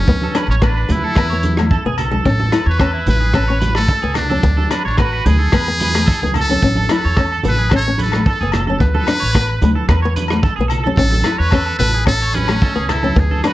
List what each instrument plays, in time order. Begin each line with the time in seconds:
Already playing: muted trumpet C#4
0.07 upright bass D2, nylon-string guitar B3, kick
0.22 clean electric guitar A4, high conga
0.35 nylon-string guitar D4, clean electric guitar B4, cross-stick, closed hi-hat, low agogo
0.48 upright bass A1, muted trumpet C#4, clean electric guitar C#5
0.62 nylon-string guitar B3, muted trumpet D4, clean electric guitar B4, kick, cross-stick, low agogo
0.77 clean electric guitar B4
0.89 upright bass D2, nylon-string guitar A3, muted trumpet E4, closed hi-hat, high conga, low conga
1.04 clean electric guitar A4
1.16 upright bass E2, nylon-string guitar B3, clean electric guitar B4, kick, cross-stick, low agogo
1.30 nylon-string guitar B3, clean electric guitar C#5
1.43 closed hi-hat, high conga
1.57 nylon-string guitar A3, cross-stick, low agogo
1.71 clean electric guitar A4, kick
1.85 upright bass B1, nylon-string guitar B3, clean electric guitar G#4
1.98 clean electric guitar A4, closed hi-hat, low conga, low agogo
2.11 nylon-string guitar G#3, clean electric guitar A4, high conga
2.25 upright bass A1, nylon-string guitar C#4, muted trumpet A4, kick
2.40 clean electric guitar A4, high conga
2.52 nylon-string guitar E4, clean electric guitar B4, cross-stick, closed hi-hat, low agogo
2.66 upright bass E2, muted trumpet B4, clean electric guitar C#5
2.79 nylon-string guitar C#4, clean electric guitar A4, kick, cross-stick, low agogo
2.93 clean electric guitar E4
3.06 upright bass A1, nylon-string guitar B3, muted trumpet B4, closed hi-hat, high conga, low conga
3.20 clean electric guitar G#4
3.34 nylon-string guitar C#4, clean electric guitar A4, kick, cross-stick, low agogo
3.48 nylon-string guitar C#4, clean electric guitar C#5
3.60 clean electric guitar B4, closed hi-hat, high conga
3.75 nylon-string guitar A3, muted trumpet A4, cross-stick, low agogo
3.88 clean electric guitar A4, kick
4.02 upright bass C#2, nylon-string guitar B3, clean electric guitar G#4
4.14 muted trumpet D4, muted clean electric guitar stroke, cross-stick, closed hi-hat, low conga, low agogo
4.30 nylon-string guitar C#4, clean electric guitar A4, high conga
4.43 upright bass D2, muted nylon-string guitar stroke, kick
4.57 clean electric guitar A4, high conga
4.71 nylon-string guitar D4, clean electric guitar B4, cross-stick, closed hi-hat, low agogo
4.85 upright bass A1, muted trumpet D4, clean electric guitar C#5
4.97 nylon-string guitar B3, muted trumpet F#4, clean electric guitar B4, kick, cross-stick, low agogo
5.13 clean electric guitar B4
5.26 upright bass D2, nylon-string guitar A3, muted trumpet G#4, closed hi-hat, high conga, low conga
5.39 clean electric guitar A4
5.52 upright bass E2, nylon-string guitar B3, clean electric guitar B4, kick, cross-stick, low agogo
5.68 nylon-string guitar B3
5.80 clean electric guitar B4, closed hi-hat, high conga
5.95 nylon-string guitar A3, cross-stick, low agogo
6.06 clean electric guitar A4, kick
6.22 upright bass C#2, nylon-string guitar B3, clean electric guitar G#4, high conga
6.34 clean electric guitar A4, closed hi-hat, low conga, low agogo
6.40 muted trumpet A4
6.49 nylon-string guitar C#4, clean electric guitar A4, high conga
6.62 upright bass A1, nylon-string guitar C#4, kick
6.75 clean electric guitar A4, high conga
6.89 nylon-string guitar E4, clean electric guitar B4, cross-stick, closed hi-hat, low agogo
6.93 muted trumpet A4
7.05 upright bass E2, clean electric guitar C#5
7.17 nylon-string guitar C#4, clean electric guitar A4, kick, cross-stick, low agogo
7.32 clean electric guitar A4
7.43 upright bass A1, nylon-string guitar B3, closed hi-hat, high conga, low conga
7.48 muted trumpet B4
7.58 clean electric guitar G#4
7.70 nylon-string guitar C#4, clean electric guitar A4, kick, cross-stick, low agogo
7.76 muted trumpet C#5
7.88 nylon-string guitar C#4
7.98 clean electric guitar B4, closed hi-hat, high conga
8.03 muted trumpet A4
8.12 cross-stick, low agogo
8.16 nylon-string guitar A3
8.26 clean electric guitar A4, muted trumpet A4, kick
8.41 upright bass F#1, nylon-string guitar B3, clean electric guitar G#4
8.52 clean electric guitar A4, cross-stick, closed hi-hat, low conga, low agogo
8.67 nylon-string guitar C#4, clean electric guitar A4, high conga
8.80 upright bass D2, nylon-string guitar B3, muted trumpet B4, kick
8.94 clean electric guitar A4, high conga
9.07 nylon-string guitar D4, muted clean electric guitar stroke, cross-stick, closed hi-hat, low agogo
9.20 upright bass A1, clean electric guitar C#5
9.33 nylon-string guitar B3, clean electric guitar B4, kick, cross-stick, low agogo
9.49 clean electric guitar B4
9.62 upright bass D2, nylon-string guitar A3, closed hi-hat, high conga, low conga
9.75 clean electric guitar A4
9.89 upright bass E2, nylon-string guitar B3, clean electric guitar B4, kick, cross-stick, low agogo
10.02 nylon-string guitar B3, clean electric guitar C#5
10.16 clean electric guitar B4, closed hi-hat, high conga
10.28 cross-stick, low agogo
10.33 nylon-string guitar A3
10.43 clean electric guitar A4, kick
10.56 upright bass B1, clean electric guitar G#4
10.61 nylon-string guitar B3
10.68 clean electric guitar A4, closed hi-hat, low conga, low agogo
10.84 nylon-string guitar C#4, clean electric guitar A4, high conga
10.97 upright bass A1, nylon-string guitar C#4, muted trumpet A4, kick
11.11 clean electric guitar A4, high conga
11.23 nylon-string guitar E4, clean electric guitar B4, cross-stick, closed hi-hat, low agogo
11.38 upright bass E2, muted trumpet B4, clean electric guitar C#5
11.51 nylon-string guitar C#4, clean electric guitar A4, kick, cross-stick, low agogo
11.66 clean electric guitar A4
11.79 upright bass A1, nylon-string guitar B3, muted trumpet B4, closed hi-hat, high conga, low conga
11.94 clean electric guitar G#4
12.06 nylon-string guitar C#4, muted trumpet A4, muted clean electric guitar stroke, kick, cross-stick, low agogo
12.22 clean electric guitar C#5
12.34 muted trumpet C#4, clean electric guitar B4, closed hi-hat, high conga
12.48 nylon-string guitar A3, cross-stick, low agogo
12.62 clean electric guitar A4, kick
12.75 upright bass C#2, nylon-string guitar B3, clean electric guitar G#4
12.89 muted trumpet E4, clean electric guitar A4, cross-stick, closed hi-hat, low conga, low agogo
13.03 nylon-string guitar C#4, clean electric guitar A4, high conga
13.16 upright bass D2, nylon-string guitar B3, muted trumpet G#4, kick
13.31 clean electric guitar A4, high conga
13.44 nylon-string guitar D4, muted trumpet F#4, clean electric guitar B4, cross-stick, closed hi-hat, low agogo